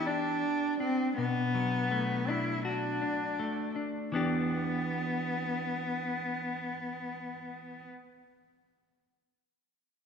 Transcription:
0.00 0.43 E3 soft
0.00 1.91 B3 soft
0.00 1.18 G4 soft
0.06 0.80 D4 medium
0.06 0.80 D4 soft
0.80 1.15 C4 medium
0.80 2.28 D4 soft
1.18 3.02 B2 soft
1.18 2.31 B3 medium
1.55 3.39 F#3 soft
1.91 3.38 A3 soft
2.28 3.01 D4 soft
2.28 2.66 E4 soft
2.65 3.74 D4 soft
2.65 4.13 F#4 soft
3.02 3.75 D4 soft
3.39 4.13 A3 soft
3.76 4.13 D4 soft
4.12 7.86 E3 soft
4.12 7.88 B3 soft
4.12 7.85 B3 soft
4.12 7.89 D4 soft
4.12 7.90 G4 soft

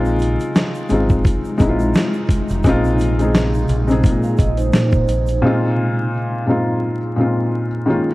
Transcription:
0.00 0.36 A#1 loud
0.00 5.39 C3 medium
0.00 0.55 G#3 loud
0.00 5.39 G#3 medium
0.00 0.55 C4 loud
0.00 0.56 D#4 loud
0.00 5.39 D#4 medium
0.00 0.57 F4 loud
0.05 shaker soft
0.19 closed hi-hat medium
0.19 shaker soft
0.40 closed hi-hat soft
0.40 shaker soft
0.55 snare loud
0.55 closed hi-hat loud
0.55 shaker medium
0.75 shaker soft
0.89 1.22 G#1 medium
0.89 1.38 G#3 medium
0.89 1.39 C4 medium
0.89 1.39 D#4 medium
0.89 closed hi-hat medium
0.89 shaker medium
0.94 1.40 F4 medium
1.09 kick medium
1.09 shaker soft
1.25 kick loud
1.25 closed hi-hat medium
1.25 shaker medium
1.45 shaker soft
1.58 1.92 A#1 medium
1.58 2.29 G#3 loud
1.58 2.29 C4 medium
1.58 2.30 D#4 medium
1.58 kick loud
1.58 closed hi-hat medium
1.58 shaker soft
1.62 1.68 E4 medium
1.69 2.34 F4 medium
1.80 shaker soft
1.94 snare loud
1.94 closed hi-hat medium
1.94 shaker medium
2.13 shaker soft
2.29 kick medium
2.29 closed hi-hat medium
2.29 shaker medium
2.49 2.63 F1 medium
2.49 closed hi-hat soft
2.49 shaker medium
2.64 3.65 A#1 loud
2.64 2.99 G#3 loud
2.64 3.00 C4 loud
2.64 3.01 D#4 loud
2.64 kick loud
2.64 closed hi-hat medium
2.64 shaker medium
2.69 3.01 F4 loud
2.85 shaker soft
2.99 closed hi-hat medium
2.99 shaker soft
3.19 3.64 G#3 medium
3.19 3.65 C4 medium
3.19 3.65 D#4 medium
3.19 closed hi-hat soft
3.19 shaker soft
3.23 3.66 G#4 medium
3.35 snare loud
3.35 closed hi-hat loud
3.35 shaker medium
3.54 shaker soft
3.68 4.06 A#1 medium
3.68 closed hi-hat medium
3.68 shaker soft
3.87 4.80 G#3 medium
3.87 4.80 C4 medium
3.87 4.81 D#4 medium
3.87 closed hi-hat soft
3.87 shaker soft
3.92 4.82 G#4 loud
4.04 4.35 A#2 loud
4.04 kick loud
4.04 closed hi-hat medium
4.04 shaker medium
4.23 4.38 G#4 medium
4.23 4.37 F5 medium
4.23 shaker soft
4.37 4.70 A#1 medium
4.37 4.57 D#5 medium
4.37 kick medium
4.37 closed hi-hat medium
4.37 shaker soft
4.57 5.39 D#4 medium
4.57 5.39 C5 medium
4.57 closed hi-hat soft
4.57 shaker medium
4.73 5.05 A#2 loud
4.73 snare loud
4.73 closed hi-hat medium
4.73 shaker medium
4.92 kick medium
4.92 shaker soft
5.08 5.40 A#1 medium
5.08 closed hi-hat medium
5.08 shaker soft
5.27 closed hi-hat soft
5.27 shaker medium
5.42 6.13 A#2 loud
5.42 6.13 G#3 medium
5.42 6.14 C4 medium
5.42 6.14 D#4 medium
5.46 6.15 F4 loud
6.46 6.95 A#2 medium
6.46 6.96 G#3 medium
6.46 6.96 C4 medium
6.46 6.97 D#4 medium
6.46 6.97 F4 medium
7.16 7.65 A#2 medium
7.16 7.66 G#3 medium
7.16 7.66 C4 medium
7.16 7.67 D#4 medium
7.21 7.67 F4 medium
7.86 8.14 D#3 medium
7.86 8.14 G#3 medium
7.86 8.14 A#3 medium
7.86 8.14 C#4 medium
7.90 8.14 F4 medium

